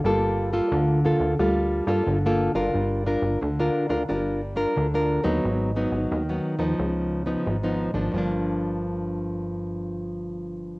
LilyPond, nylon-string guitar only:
\new Staff \with { instrumentName = "Nylon-string guitar" } { \time 4/4 \key g \minor \tempo 4 = 89 << { <bes f' a'>8. <bes f' a'>8. <bes f' a'>8 <bes f' a'>8. <bes f' a'>8 <bes f' a'>8 <d' f' bes'>16~ | <d' f' bes'>8 <d' f' bes'>8 r16 <d' f' bes'>8 <d' f' bes'>16 <d' f' bes'>8 r16 <d' f' bes'>8 <d' f' bes'>8 <fis b ees'>16~ | <fis b ees'>8 <ges ces' ees'>8. <ges ces' ees'>8 <f ces' ees'>4 <eis b dis'>8 <eis b dis'>8 <eis bes d'>16~ | <eis bes d'>8 r2. r8 | } \\ { g4 d4 g4 d4 | g4 d4 g4 d4 | aes,4 ees4 cis4 gis,4 | <g, f bes d'>1 | } >> }